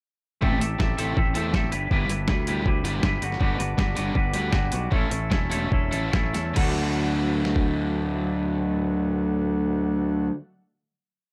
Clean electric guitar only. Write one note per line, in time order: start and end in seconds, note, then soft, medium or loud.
0.41 0.79 A3 medium
0.41 0.78 C4 medium
0.41 0.62 G4 medium
0.41 0.60 A4 medium
0.41 0.60 E5 medium
0.61 0.80 G4 soft
0.61 0.80 A4 medium
0.61 0.81 E5 medium
0.79 0.98 C4 medium
0.79 0.98 G4 medium
0.79 0.97 A4 medium
0.79 0.96 E5 medium
0.97 1.36 A3 medium
0.97 1.15 C4 medium
0.97 1.16 G4 medium
0.97 1.16 A4 medium
0.97 1.18 E5 medium
1.16 1.52 C4 medium
1.16 1.37 G4 medium
1.16 1.35 A4 medium
1.16 1.34 E5 medium
1.35 1.55 G4 medium
1.35 1.54 A4 medium
1.35 1.54 E5 medium
1.53 1.71 A3 medium
1.53 1.71 C4 medium
1.53 1.72 G4 medium
1.53 1.71 A4 medium
1.53 1.72 E5 medium
1.72 1.90 G3 medium
1.72 1.91 D4 medium
1.72 1.91 E4 medium
1.72 1.93 B4 medium
1.90 2.28 G3 medium
1.90 2.11 D4 medium
1.90 2.09 E4 medium
1.90 2.09 B4 loud
2.10 2.28 D4 medium
2.10 2.28 E4 medium
2.10 2.30 B4 medium
2.28 2.49 G3 medium
2.28 2.48 D4 medium
2.28 2.47 E4 medium
2.28 2.47 B4 medium
2.47 2.66 G3 medium
2.47 2.66 D4 medium
2.47 2.67 E4 medium
2.47 2.67 B4 medium
2.67 3.02 G3 medium
2.67 2.86 D4 medium
2.67 2.85 E4 medium
2.67 2.83 B4 medium
2.85 3.03 D4 soft
2.85 3.03 E4 medium
2.85 3.04 B4 medium
3.03 3.21 G3 medium
3.03 3.21 D4 medium
3.03 3.21 E4 medium
3.03 3.21 B4 loud
3.23 3.40 G3 medium
3.23 3.40 D4 medium
3.23 3.41 F#4 medium
3.23 3.42 B4 medium
3.41 3.77 G3 medium
3.41 3.60 D4 medium
3.41 3.59 F#4 medium
3.41 3.57 B4 medium
3.59 3.78 D4 medium
3.59 3.79 F#4 medium
3.59 3.79 B4 medium
3.78 3.98 G3 medium
3.78 3.97 D4 medium
3.78 3.96 F#4 medium
3.78 3.95 B4 medium
3.96 4.13 G3 medium
3.96 4.14 D4 medium
3.96 4.15 F#4 medium
3.96 4.16 B4 medium
4.14 4.51 G3 medium
4.14 4.35 D4 medium
4.14 4.34 F#4 medium
4.14 4.33 B4 medium
4.34 4.52 D4 medium
4.34 4.52 F#4 medium
4.34 4.53 B4 medium
4.52 4.90 G3 medium
4.52 4.74 D4 medium
4.52 4.73 F#4 loud
4.52 4.71 B4 loud
4.72 4.92 D4 medium
4.72 4.92 F#4 medium
4.72 4.91 B4 medium
4.92 5.29 A3 medium
4.92 5.11 C#4 medium
4.92 5.10 E4 medium
4.92 5.09 A4 loud
5.10 5.30 C#4 medium
5.10 5.31 E4 medium
5.10 5.31 A4 medium
5.30 5.52 A3 medium
5.30 5.51 C#4 medium
5.30 5.51 E4 medium
5.30 5.50 A4 medium
5.51 5.70 A3 medium
5.51 5.71 C#4 medium
5.51 5.72 E4 medium
5.51 5.72 A4 medium
5.71 6.10 A3 medium
5.71 5.93 C#4 medium
5.71 5.92 E4 medium
5.71 5.90 A4 medium
5.91 6.12 C#4 medium
5.91 6.12 E4 medium
5.91 6.13 A4 medium
6.12 6.54 A3 loud
6.12 6.35 C#4 medium
6.12 6.34 E4 loud
6.12 6.33 A4 loud
6.34 6.56 C#4 medium
6.34 6.56 E4 medium
6.34 6.55 A4 medium
6.55 10.31 D3 medium
6.55 10.32 A3 medium
6.55 10.33 D4 medium
6.55 10.34 F#4 medium
6.55 10.35 A4 medium